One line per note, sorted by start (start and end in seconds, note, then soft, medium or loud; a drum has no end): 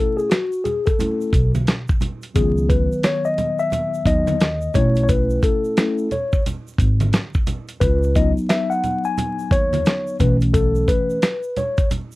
0.00 0.27 A3 medium
0.00 0.27 C#4 medium
0.00 0.27 E4 medium
0.00 0.19 A4 medium
0.17 0.31 G#4 medium
0.17 shaker soft
0.30 0.66 F#4 medium
0.30 snare loud
0.30 closed hi-hat loud
0.30 shaker medium
0.52 shaker soft
0.64 0.87 G#4 medium
0.64 closed hi-hat medium
0.64 low conga medium
0.64 shaker soft
0.86 1.50 A4 medium
0.86 kick medium
0.86 closed hi-hat soft
0.86 shaker soft
0.99 1.30 A3 soft
0.99 1.30 C#4 soft
0.99 1.30 E4 medium
0.99 closed hi-hat medium
0.99 low conga medium
0.99 shaker medium
1.21 shaker soft
1.33 1.64 B1 medium
1.33 kick loud
1.33 closed hi-hat medium
1.33 shaker soft
1.55 closed hi-hat medium
1.55 high conga medium
1.55 shaker soft
1.67 snare loud
1.67 closed hi-hat medium
1.67 shaker medium
1.88 kick loud
1.88 shaker soft
2.01 closed hi-hat medium
2.01 low conga medium
2.01 shaker soft
2.22 closed hi-hat medium
2.22 shaker soft
2.34 2.86 C#2 loud
2.34 4.70 D#3 medium
2.34 4.05 F#3 medium
2.34 4.05 B3 medium
2.34 2.71 G#4 medium
2.34 kick loud
2.34 closed hi-hat loud
2.34 shaker medium
2.57 shaker soft
2.69 3.05 B4 medium
2.69 kick medium
2.69 closed hi-hat medium
2.69 shaker soft
2.92 shaker soft
3.03 3.26 C#5 loud
3.03 snare loud
3.03 closed hi-hat loud
3.03 shaker medium
3.25 3.60 D#5 loud
3.25 shaker soft
3.38 closed hi-hat medium
3.38 low conga medium
3.38 shaker soft
3.59 4.08 E5 loud
3.59 shaker soft
3.72 closed hi-hat medium
3.72 low conga medium
3.72 shaker medium
3.94 shaker soft
4.05 4.67 D#2 loud
4.05 4.37 F#3 medium
4.05 4.37 B3 soft
4.05 4.37 D#4 medium
4.05 4.77 D#5 loud
4.05 kick loud
4.05 closed hi-hat medium
4.05 shaker soft
4.27 closed hi-hat medium
4.27 high conga medium
4.27 shaker soft
4.40 snare loud
4.40 closed hi-hat medium
4.40 shaker medium
4.61 shaker soft
4.74 5.36 B1 loud
4.74 5.76 A3 medium
4.74 5.76 C#4 medium
4.74 5.77 E4 medium
4.74 5.02 C#5 medium
4.74 kick medium
4.74 closed hi-hat medium
4.74 low conga medium
4.74 shaker soft
4.95 closed hi-hat medium
4.95 shaker soft
5.03 5.09 C#5 medium
5.09 5.41 B4 medium
5.09 kick loud
5.09 closed hi-hat loud
5.09 shaker medium
5.30 shaker soft
5.42 6.13 A4 medium
5.42 kick loud
5.42 closed hi-hat medium
5.42 shaker medium
5.64 shaker soft
5.77 6.08 A3 medium
5.77 6.08 C#4 soft
5.77 6.08 E4 medium
5.77 snare loud
5.77 closed hi-hat medium
5.77 shaker medium
5.98 shaker soft
6.11 6.43 C#5 medium
6.11 closed hi-hat medium
6.11 low conga medium
6.11 shaker soft
6.33 kick medium
6.33 shaker soft
6.46 closed hi-hat medium
6.46 low conga medium
6.46 shaker medium
6.67 shaker soft
6.78 7.09 G#1 medium
6.78 kick loud
6.78 closed hi-hat medium
6.78 shaker soft
7.00 closed hi-hat medium
7.00 high conga medium
7.00 shaker medium
7.13 snare loud
7.13 closed hi-hat medium
7.13 shaker medium
7.34 kick loud
7.34 shaker soft
7.47 closed hi-hat medium
7.47 low conga medium
7.47 shaker medium
7.69 closed hi-hat medium
7.69 shaker soft
7.80 8.31 C#2 loud
7.80 8.16 B4 loud
7.80 kick loud
7.80 closed hi-hat medium
7.80 shaker medium
8.03 shaker soft
8.15 10.16 F#3 medium
8.15 10.16 B3 soft
8.15 10.16 D#4 medium
8.15 8.31 D#5 medium
8.15 kick medium
8.15 closed hi-hat medium
8.15 shaker medium
8.37 shaker soft
8.49 8.71 E5 loud
8.49 snare loud
8.49 closed hi-hat loud
8.49 shaker medium
8.70 9.05 F#5 loud
8.70 shaker soft
8.84 closed hi-hat medium
8.84 low conga medium
8.84 shaker soft
9.04 9.53 G#5 loud
9.04 shaker soft
9.18 closed hi-hat medium
9.18 low conga medium
9.18 shaker medium
9.39 shaker soft
9.51 9.82 D#2 loud
9.51 10.16 C#5 loud
9.51 kick loud
9.51 closed hi-hat medium
9.51 shaker medium
9.73 closed hi-hat medium
9.73 high conga medium
9.73 shaker medium
9.85 snare loud
9.85 closed hi-hat medium
9.85 shaker medium
10.07 shaker soft
10.19 10.81 B1 medium
10.19 11.18 E3 medium
10.19 11.18 A3 medium
10.19 11.19 C#4 medium
10.19 10.36 B4 medium
10.19 kick medium
10.19 closed hi-hat medium
10.19 low conga medium
10.19 shaker soft
10.41 closed hi-hat medium
10.41 shaker soft
10.54 10.89 A4 medium
10.54 kick loud
10.54 closed hi-hat loud
10.54 shaker medium
10.75 shaker soft
10.88 11.58 B4 medium
10.88 kick medium
10.88 closed hi-hat medium
10.88 shaker medium
11.10 shaker soft
11.22 snare loud
11.22 closed hi-hat loud
11.22 shaker medium
11.43 shaker soft
11.56 11.88 C#5 medium
11.56 closed hi-hat medium
11.56 low conga medium
11.56 shaker soft
11.78 kick loud
11.78 closed hi-hat soft
11.78 shaker soft
11.91 closed hi-hat medium
11.91 low conga medium
11.91 shaker medium
12.12 shaker soft